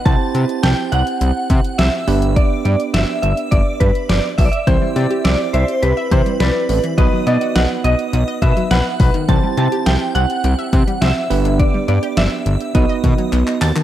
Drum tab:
HH |x-xxx-xxx-xxx-ox|x-xxx-xxx-xxx-ox|x-xxx-xxx-xxx-ox|x-xxx-xxx-xxx-ox|
CP |----------------|----------------|----------------|----------------|
SD |----o-------o---|----o-------o---|----o-------o---|----o-------o---|
BD |o---------o-----|o-------o-o---o-|o---------o-----|o---------o---o-|

HH |x-xxx-xxx-xxx-ox|x-xxx-xxx-xxx-ox|
CP |----------------|------------xxxx|
SD |----o-------o---|----o-----------|
BD |o---------o-----|o-------o-o-----|